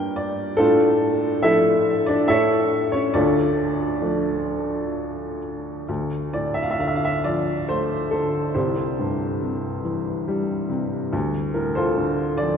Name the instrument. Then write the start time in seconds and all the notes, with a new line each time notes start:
upright piano
Already playing: G2 G3 A#3 D4 G4 A#4 G5
0.16 D5
0.57 A2 A3 D4 F4 A4
1.42 F3 A3 D4 E4 A4 E5
2.06 D4 D5
2.28 A2 E4 A4 C#5 E5
2.92 C#4 C#5
3.14 D2 D4 F4 A4 D5
4.01 F3 A3 D4
5.89 D2
6.33 A2 D5
6.54 E5
6.62 F5
6.71 E5
6.79 D3 F5
6.87 E5
6.95 F5
7.05 E5
7.24 F3 D5
7.68 A3 C5
8.11 D3 A4
8.54 C2 E4 G4 C5
8.99 G2
9.42 C3
9.85 E3
10.28 G3
10.70 C3
11.13 D2
11.54 A2 A#4
11.75 F4 A4 C5
11.97 D3
12.37 F3 D5